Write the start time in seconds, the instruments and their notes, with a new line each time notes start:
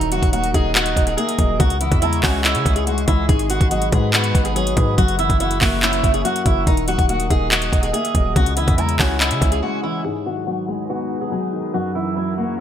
Already playing: 808-style bass D#1, grand piano D#3, ambient pad F#4 A#4 D#5 A#5
0.01 closed hi-hat
0.12 grand piano F#3, steel-string acoustic guitar F#4, closed hi-hat
0.23 808-style bass D#1, kick, closed hi-hat
0.33 grand piano A#3, steel-string acoustic guitar F#4, soft synth lead F#5, closed hi-hat
0.44 closed hi-hat
0.54 808-style bass D#1, grand piano D#4, steel-string acoustic guitar G#4, soft synth lead D#5, kick, closed hi-hat
0.75 steel-string acoustic guitar F#4, grand piano D#5, clap, closed hi-hat
0.86 closed hi-hat
0.96 808-style bass D#1, kick, closed hi-hat
1.07 steel-string acoustic guitar G#4, closed hi-hat
1.17 grand piano A#3, steel-string acoustic guitar G#4, soft synth lead E5, closed hi-hat
1.29 closed hi-hat
1.39 808-style bass D#1, grand piano F#3, soft synth lead D#5, kick, closed hi-hat
1.60 808-style bass C#2, grand piano C#3, ambient pad E4 G#4 D#5 C#6, steel-string acoustic guitar F#4, kick, closed hi-hat
1.70 closed hi-hat
1.81 grand piano E3, steel-string acoustic guitar E4, closed hi-hat
1.92 808-style bass E2, kick, closed hi-hat
2.02 grand piano G#3, steel-string acoustic guitar E4, soft synth lead A#5, closed hi-hat
2.13 closed hi-hat
2.23 808-style bass C#2, grand piano C#4, steel-string acoustic guitar F#4, soft synth lead G#5, kick, clap, open hi-hat
2.44 steel-string acoustic guitar E4, grand piano D#5, clap, closed hi-hat
2.55 808-style bass C#3, closed hi-hat
2.66 808-style bass C#2, kick, closed hi-hat
2.76 steel-string acoustic guitar G#4, closed hi-hat
2.87 grand piano G#3, steel-string acoustic guitar F#4, closed hi-hat
2.98 closed hi-hat
3.08 808-style bass C#2, grand piano E3, steel-string acoustic guitar E4, kick, closed hi-hat
3.29 808-style bass G#1, grand piano G#2, steel-string acoustic guitar G#4, ambient pad F#5 B5, kick, closed hi-hat
3.39 closed hi-hat
3.50 grand piano D#3, steel-string acoustic guitar F#4, closed hi-hat
3.61 808-style bass G#1, kick, closed hi-hat
3.71 grand piano F#3, steel-string acoustic guitar F#4, soft synth lead D#5, closed hi-hat
3.82 closed hi-hat
3.92 808-style bass G#2, grand piano G#3, steel-string acoustic guitar G#4, soft synth lead B4, kick, closed hi-hat
4.13 grand piano B3, steel-string acoustic guitar F#4, clap, closed hi-hat
4.24 closed hi-hat
4.35 808-style bass G#1, kick, closed hi-hat
4.45 steel-string acoustic guitar G#4, closed hi-hat
4.56 grand piano F#3, steel-string acoustic guitar G#4, soft synth lead C#5, closed hi-hat
4.67 closed hi-hat
4.77 808-style bass G#2, grand piano D#3, soft synth lead B4, kick, closed hi-hat
4.98 808-style bass F#1, grand piano F#2, steel-string acoustic guitar F#4, ambient pad A#4 E5 F#5 C#6, kick, closed hi-hat
5.08 closed hi-hat
5.19 grand piano E3, steel-string acoustic guitar E4, closed hi-hat
5.30 808-style bass F#1, kick, closed hi-hat
5.40 grand piano F#3, steel-string acoustic guitar E4, soft synth lead F#5, closed hi-hat
5.51 closed hi-hat
5.61 808-style bass F#1, grand piano A#3, steel-string acoustic guitar F#4, soft synth lead E5, kick, clap, open hi-hat
5.82 grand piano C#4, steel-string acoustic guitar E4, clap, closed hi-hat
5.93 closed hi-hat
6.04 808-style bass F#1, kick, closed hi-hat
6.14 steel-string acoustic guitar G#4, closed hi-hat
6.25 grand piano F#3, steel-string acoustic guitar F#4, soft synth lead F#5, closed hi-hat
6.36 closed hi-hat
6.46 808-style bass F#1, grand piano E3, steel-string acoustic guitar E4, soft synth lead E5, kick, closed hi-hat
6.67 808-style bass D#1, grand piano D#3, steel-string acoustic guitar D#4, ambient pad D#5 D#6, kick, closed hi-hat
6.77 closed hi-hat
6.88 grand piano F#3, steel-string acoustic guitar F#4, closed hi-hat
6.99 808-style bass D#1, kick, closed hi-hat
7.09 grand piano A#3, steel-string acoustic guitar F#4, soft synth lead F#5, closed hi-hat
7.20 closed hi-hat
7.30 808-style bass D#1, grand piano D#4, steel-string acoustic guitar G#4, soft synth lead D#5, kick, closed hi-hat
7.51 steel-string acoustic guitar F#4, grand piano D#5, clap, closed hi-hat
7.62 closed hi-hat
7.73 808-style bass D#1, kick, closed hi-hat
7.83 steel-string acoustic guitar G#4, closed hi-hat
7.93 grand piano A#3, steel-string acoustic guitar G#4, soft synth lead E5, closed hi-hat
8.05 closed hi-hat
8.15 808-style bass D#1, grand piano F#3, soft synth lead D#5, kick, closed hi-hat
8.36 808-style bass C#2, grand piano C#3, ambient pad E4 C#5 G#5, steel-string acoustic guitar F#4, kick, closed hi-hat
8.46 closed hi-hat
8.57 grand piano E3, steel-string acoustic guitar E4, closed hi-hat
8.68 808-style bass E2, kick, closed hi-hat
8.78 grand piano G#3, steel-string acoustic guitar E4, soft synth lead A#5, closed hi-hat
8.89 closed hi-hat
8.99 808-style bass C#2, grand piano C#4, steel-string acoustic guitar F#4, soft synth lead G#5, kick, clap, open hi-hat
9.20 steel-string acoustic guitar E4, grand piano D#5, clap, closed hi-hat
9.31 808-style bass C#3, closed hi-hat
9.42 808-style bass C#2, kick, closed hi-hat
9.52 steel-string acoustic guitar G#4, closed hi-hat
9.63 grand piano G#3, steel-string acoustic guitar F#4
9.83 grand piano E3, steel-string acoustic guitar E4
10.05 grand piano G#2, ambient pad F#3 D#4 G#4 B4, steel-string acoustic guitar G#4
10.26 grand piano D#3, steel-string acoustic guitar F#4
10.47 grand piano F#3, steel-string acoustic guitar F#4
10.68 grand piano G#3, steel-string acoustic guitar G#4
10.90 grand piano B3, steel-string acoustic guitar F#4
11.21 steel-string acoustic guitar G#4
11.32 grand piano F#3, steel-string acoustic guitar G#4
11.53 grand piano D#3
11.74 grand piano F#2, ambient pad C#4 E4 A#4, steel-string acoustic guitar F#4
11.95 grand piano E3, steel-string acoustic guitar E4
12.16 grand piano F#3, steel-string acoustic guitar E4
12.37 grand piano A#3, steel-string acoustic guitar F#4